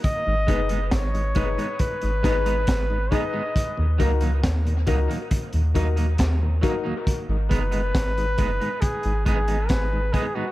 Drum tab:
HH |x-xxxxxxxxxxx-x-|x-xxxxxxxxxxx-x-|x-xxxxxxxxxxx-x-|
SD |----o-----o-o---|----o-------o---|----o-------o---|
BD |o-o-o-o-o-o-o-o-|o-o-o-o-o-o-o-o-|o-o-o-o-o-o-o-o-|